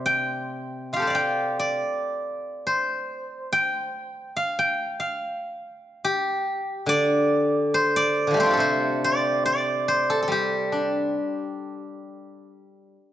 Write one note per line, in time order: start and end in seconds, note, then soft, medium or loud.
0.00 1.80 C3 soft
0.00 1.01 C5 medium
0.00 0.93 D5 soft
0.06 1.14 G5 medium
0.93 3.45 F4 soft
0.93 3.32 G4 soft
0.93 1.10 F5 medium
1.00 3.19 A4 soft
1.00 2.66 C5 soft
1.07 1.59 D5 soft
1.07 2.77 F5 soft
1.15 2.70 G5 medium
1.59 3.44 D5 medium
2.67 4.65 C5 medium
3.53 4.58 G5 medium
4.37 4.99 F5 medium
4.59 6.14 G5 medium
5.00 6.66 F5 medium
6.04 8.40 G4 medium
6.86 8.26 D3 soft
6.86 7.96 D5 medium
7.74 8.39 C5 medium
7.96 9.04 D5 medium
8.27 8.46 D3 soft
8.27 8.57 F3 soft
8.34 8.52 G3 soft
8.34 11.69 A3 soft
8.40 11.41 C4 soft
8.40 10.72 D4 soft
8.40 8.60 C5 medium
8.46 10.99 F4 soft
8.51 10.31 G4 soft
8.51 10.09 A4 medium
8.57 11.16 C3 soft
8.57 9.88 C5 medium
9.04 9.45 D5 medium
9.46 11.30 D5 medium
9.88 11.86 C5 medium
10.10 10.22 A4 medium
10.23 12.42 A4 soft
10.28 12.95 G3 soft
10.28 12.93 G4 medium
10.72 12.49 D4 soft